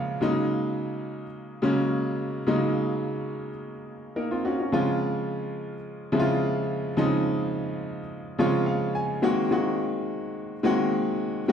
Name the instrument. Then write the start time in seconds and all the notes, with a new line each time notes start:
grand piano
Already playing: C#3 F3 G#3 A#3 F4 A#4 C#5 F5
0.21 C#3 F#3 G#3 A#3 D#4
1.62 C#3 F#3 G#3 A#3 C#4
2.47 C#3 F#3 G#3 A#3 D#4
4.16 A#3 D#4 A#4
4.31 C4 F4
4.45 C#4 F#4
4.60 C#4 F#4
4.72 C#3 F3 G#3 C4 F4
6.12 C#3 F3 G#3 C4 E4
6.19 F4
6.97 C#3 F3 G#3 C4 D#4
8.39 C#3 F3 G#3 C4 F4 C#5
8.66 F5
8.95 G#5
9.22 D#3 G#3 A#3 C4 F#4
9.51 D#3 G#3 A#3 C4 F#4
10.63 D#3 G#3 A#3 C4 F#4
11.48 D#3 G#3 A#3